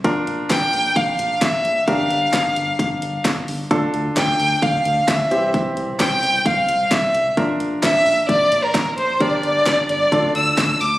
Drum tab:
HH |xxxoxxxx|xxxxxxxo|xxxoxxxx|xxxoxxxx|
CP |--x---x-|--x---x-|--x---x-|--x---x-|
SD |--o---o-|--o---o-|--o---o-|--o---o-|
BD |o-o-o-o-|o-o-o-o-|o-o-o-o-|o-o-o-o-|

HH |xxxoxxxx|xxxxxxxo|
CP |--x---x-|--x---x-|
SD |--o---o-|--o---o-|
BD |o-o-o-o-|o-o-o-o-|